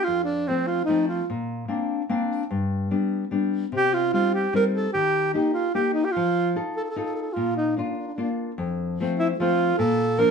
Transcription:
0.04 0.47 F2 soft
0.04 0.24 F4 medium
0.24 0.49 D4 medium
0.47 0.81 F3 soft
0.47 0.81 A3 soft
0.47 0.69 C4 medium
0.47 0.82 C4 soft
0.67 0.84 F4 medium
0.85 1.21 F3 soft
0.85 1.21 A3 soft
0.85 1.06 D#4 medium
0.89 1.22 C4 soft
1.08 1.27 F4 medium
1.30 1.68 A#2 medium
1.68 2.01 A#3 soft
1.68 2.01 C4 soft
1.68 2.02 D4 soft
2.09 2.42 A#3 soft
2.09 2.42 C4 soft
2.09 2.43 D4 soft
2.51 2.90 G2 medium
2.91 3.24 G3 soft
2.91 3.24 B3 soft
2.91 3.24 D4 soft
3.31 3.64 G3 soft
3.31 3.65 B3 soft
3.31 3.64 D4 soft
3.72 4.12 C3 soft
3.72 3.95 G4 medium
3.94 4.13 F4 medium
4.13 4.46 G3 soft
4.13 4.46 C4 soft
4.13 4.46 D#4 soft
4.13 4.33 F4 medium
4.34 4.53 G4 medium
4.54 4.87 G3 soft
4.54 4.87 C4 soft
4.54 4.86 D#4 soft
4.54 4.65 A#4 medium
4.74 4.92 A4 medium
4.93 5.34 D#3 soft
4.93 5.32 G4 medium
5.34 5.67 A#3 soft
5.34 5.52 D#4 medium
5.34 5.67 D#4 soft
5.34 5.68 G4 soft
5.53 5.73 F4 medium
5.74 6.07 A#3 soft
5.74 6.08 D#4 soft
5.74 5.93 G4 medium
5.74 6.08 G4 soft
5.94 6.06 D#4 medium
6.04 6.13 G4 medium
6.12 6.54 F4 medium
6.16 6.55 F3 medium
6.56 6.88 D#4 soft
6.56 6.88 F4 soft
6.56 6.89 A4 soft
6.77 6.84 A4 medium
6.85 6.89 A4 soft
6.90 6.98 A4 medium
6.96 7.29 D#4 soft
6.96 7.29 F4 soft
6.96 7.29 A4 soft
6.96 7.04 A4 soft
7.05 7.13 A4 medium
7.15 7.21 A4 medium
7.22 7.35 A4 medium
7.33 7.76 A#2 soft
7.33 7.55 F4 medium
7.57 7.75 D#4 medium
7.77 8.10 A#3 soft
7.77 7.83 D4 soft
7.77 8.10 D4 soft
7.77 8.11 F4 soft
7.83 7.91 D4 soft
7.92 7.98 D4 soft
7.98 8.06 D4 soft
8.08 8.13 D4 soft
8.14 8.51 A#3 soft
8.14 8.22 D4 soft
8.18 8.51 D4 soft
8.18 8.30 D4 soft
8.18 8.51 F4 soft
8.58 8.98 F2 medium
9.00 9.32 F3 soft
9.00 9.32 A3 soft
9.00 9.33 C4 soft
9.19 9.28 E4 medium
9.39 9.72 F3 soft
9.39 9.72 A3 soft
9.39 9.73 C4 soft
9.39 9.77 F4 medium
9.78 10.18 A#2 medium
9.78 10.20 A4 medium
10.18 10.31 F3 soft
10.18 10.31 A#3 soft
10.18 10.31 D4 soft
10.18 10.31 A#4 medium

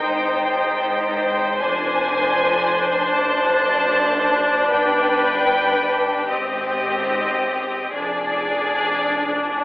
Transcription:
0.00 1.56 D#4 medium
0.00 1.56 G5 medium
0.05 1.57 G#1 medium
0.05 1.57 G#2 medium
0.05 4.68 C5 medium
1.59 3.14 F1 loud
1.59 3.14 F2 medium
1.59 6.29 D4 medium
1.59 3.10 G#5 medium
3.13 4.68 F#1 medium
3.13 4.68 F#2 medium
3.13 4.68 A5 medium
4.71 6.32 G1 medium
4.71 6.32 G2 medium
4.71 6.28 B4 medium
4.71 6.28 G5 medium
6.31 7.95 G#1 medium
6.31 7.96 G#2 medium
6.31 7.91 C4 medium
6.31 7.91 G4 medium
6.31 7.91 D#5 medium
7.94 9.64 F1 medium
7.94 9.64 F2 medium
7.94 9.64 D4 medium
7.94 9.64 G#4 medium
7.94 9.64 D5 medium

